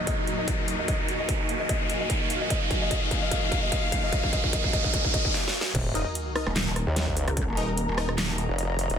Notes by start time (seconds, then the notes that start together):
Already playing: D#2 A#2 F#3 D#4 F#4 A#4 F5 G#5, riser
0.07 D#5, kick, closed hi-hat
0.18 D#4
0.27 D#4, closed hi-hat
0.38 D#5
0.48 D#4, kick, closed hi-hat
0.59 D#4
0.68 D#4, open hi-hat
0.79 D#5
0.88 D#5, kick, closed hi-hat
0.99 D#4
1.08 D#4, closed hi-hat
1.19 D#5
1.29 D#4, kick, closed hi-hat
1.40 D#4
1.49 D#4, closed hi-hat
1.60 D#5
1.69 D#5, kick, closed hi-hat
1.80 D#4
1.90 D#4, closed hi-hat
2.00 D#5
2.10 D#4, kick, closed hi-hat
2.21 D#4
2.30 D#4, open hi-hat
2.41 D#5
2.50 D#5 F5, kick, closed hi-hat
2.61 D#4
2.71 D#4, kick, closed hi-hat
2.82 D#5
2.91 D#5, kick, closed hi-hat
3.02 D#4
3.11 D#4, kick, closed hi-hat
3.22 D#5
3.31 D#5, kick, closed hi-hat
3.43 D#4
3.52 D#4, kick, closed hi-hat
3.63 D#5
3.72 D#5, kick, closed hi-hat
3.83 D#4
3.92 D#4, kick, open hi-hat
4.03 D#5
4.12 D#5, kick, closed hi-hat
4.23 D#4, kick
4.33 D#5, kick, closed hi-hat
4.44 D#4, kick
4.53 D#5, kick, closed hi-hat
4.64 D#4, kick
4.73 D#5, kick, closed hi-hat
4.84 D#4, kick
4.94 D#5, kick, closed hi-hat
5.05 D#4, kick
5.14 D#5, kick, closed hi-hat
5.25 D#4, kick
5.34 snare
5.48 snare
5.61 snare
5.75 D#1 D#3 D#4 F#4 A#4, kick, closed hi-hat, crash, sub drop
5.94 D#4 A#4 D#5, closed hi-hat
6.00 A#5
6.15 closed hi-hat
6.36 D#4 A#4 D#5, cross-stick
6.47 D#1, cross-stick
6.56 snare, clap, closed hi-hat
6.76 cross-stick, closed hi-hat
6.87 D#2
6.96 snare, closed hi-hat
7.07 kick
7.17 open hi-hat
7.28 C#2, cross-stick, closed hi-hat
7.37 kick, closed hi-hat
7.48 D#1
7.57 D#4 A#4 D#5, closed hi-hat
7.77 closed hi-hat
7.88 D#1
7.98 D#4 A#4 D#5, cross-stick
8.09 cross-stick
8.18 snare, clap, closed hi-hat
8.38 closed hi-hat
8.49 F1
8.59 closed hi-hat
8.79 open hi-hat
8.90 D#1, closed hi-hat